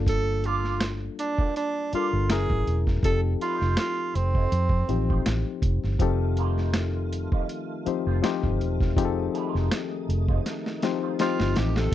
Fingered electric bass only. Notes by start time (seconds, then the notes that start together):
Already playing: G1
1.93 muted fingered electric bass stroke
2.13 G1
2.30 F#1
2.50 G#1
2.67 E1
3.04 F1
3.62 F1
4.15 F1
4.52 F2
4.89 A1
5.26 A1
5.63 F1
5.84 G1
6.00 F1
7.87 muted fingered electric bass stroke
8.07 F1
8.44 G1
8.60 E1
8.97 F1
9.55 F1
10.09 F1
11.40 G1
11.57 A1